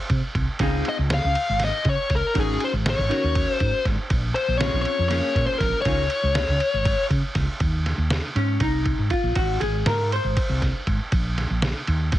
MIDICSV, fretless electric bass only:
0, 0, Header, 1, 2, 480
1, 0, Start_track
1, 0, Tempo, 501253
1, 579, Time_signature, 7, 3, 24, 8
1, 11672, End_track
2, 0, Start_track
2, 0, Title_t, "Fretless electric bass"
2, 0, Program_c, 0, 35
2, 95, Note_on_c, 0, 48, 78
2, 196, Note_off_c, 0, 48, 0
2, 336, Note_on_c, 0, 36, 84
2, 436, Note_off_c, 0, 36, 0
2, 574, Note_on_c, 0, 37, 97
2, 774, Note_off_c, 0, 37, 0
2, 943, Note_on_c, 0, 37, 89
2, 1139, Note_off_c, 0, 37, 0
2, 1188, Note_on_c, 0, 37, 90
2, 1283, Note_off_c, 0, 37, 0
2, 1427, Note_on_c, 0, 32, 81
2, 1621, Note_off_c, 0, 32, 0
2, 1773, Note_on_c, 0, 49, 84
2, 1874, Note_off_c, 0, 49, 0
2, 2011, Note_on_c, 0, 37, 84
2, 2112, Note_off_c, 0, 37, 0
2, 2255, Note_on_c, 0, 32, 96
2, 2453, Note_off_c, 0, 32, 0
2, 2613, Note_on_c, 0, 32, 97
2, 2812, Note_off_c, 0, 32, 0
2, 2857, Note_on_c, 0, 32, 97
2, 2955, Note_off_c, 0, 32, 0
2, 3098, Note_on_c, 0, 39, 84
2, 3294, Note_off_c, 0, 39, 0
2, 3453, Note_on_c, 0, 44, 77
2, 3552, Note_off_c, 0, 44, 0
2, 3694, Note_on_c, 0, 32, 88
2, 3792, Note_off_c, 0, 32, 0
2, 3933, Note_on_c, 0, 34, 101
2, 4130, Note_off_c, 0, 34, 0
2, 4289, Note_on_c, 0, 34, 88
2, 4488, Note_off_c, 0, 34, 0
2, 4528, Note_on_c, 0, 34, 101
2, 4628, Note_off_c, 0, 34, 0
2, 4775, Note_on_c, 0, 41, 86
2, 4971, Note_off_c, 0, 41, 0
2, 5128, Note_on_c, 0, 46, 80
2, 5228, Note_off_c, 0, 46, 0
2, 5368, Note_on_c, 0, 34, 83
2, 5467, Note_off_c, 0, 34, 0
2, 5606, Note_on_c, 0, 37, 100
2, 5805, Note_off_c, 0, 37, 0
2, 5967, Note_on_c, 0, 37, 97
2, 6166, Note_off_c, 0, 37, 0
2, 6205, Note_on_c, 0, 37, 97
2, 6306, Note_off_c, 0, 37, 0
2, 6449, Note_on_c, 0, 32, 85
2, 6647, Note_off_c, 0, 32, 0
2, 6801, Note_on_c, 0, 49, 81
2, 6903, Note_off_c, 0, 49, 0
2, 7045, Note_on_c, 0, 37, 90
2, 7146, Note_off_c, 0, 37, 0
2, 7281, Note_on_c, 0, 39, 87
2, 7581, Note_off_c, 0, 39, 0
2, 7637, Note_on_c, 0, 39, 76
2, 7840, Note_off_c, 0, 39, 0
2, 7998, Note_on_c, 0, 44, 75
2, 8201, Note_off_c, 0, 44, 0
2, 8239, Note_on_c, 0, 36, 90
2, 8541, Note_off_c, 0, 36, 0
2, 8604, Note_on_c, 0, 44, 80
2, 8706, Note_off_c, 0, 44, 0
2, 8840, Note_on_c, 0, 34, 91
2, 8944, Note_off_c, 0, 34, 0
2, 8964, Note_on_c, 0, 32, 100
2, 9166, Note_off_c, 0, 32, 0
2, 9202, Note_on_c, 0, 32, 85
2, 9405, Note_off_c, 0, 32, 0
2, 9442, Note_on_c, 0, 44, 90
2, 9745, Note_off_c, 0, 44, 0
2, 9807, Note_on_c, 0, 32, 82
2, 9910, Note_off_c, 0, 32, 0
2, 10047, Note_on_c, 0, 36, 85
2, 10249, Note_off_c, 0, 36, 0
2, 10411, Note_on_c, 0, 32, 89
2, 10513, Note_off_c, 0, 32, 0
2, 10654, Note_on_c, 0, 34, 99
2, 10954, Note_off_c, 0, 34, 0
2, 11013, Note_on_c, 0, 34, 83
2, 11215, Note_off_c, 0, 34, 0
2, 11374, Note_on_c, 0, 39, 88
2, 11576, Note_off_c, 0, 39, 0
2, 11616, Note_on_c, 0, 32, 93
2, 11672, Note_off_c, 0, 32, 0
2, 11672, End_track
0, 0, End_of_file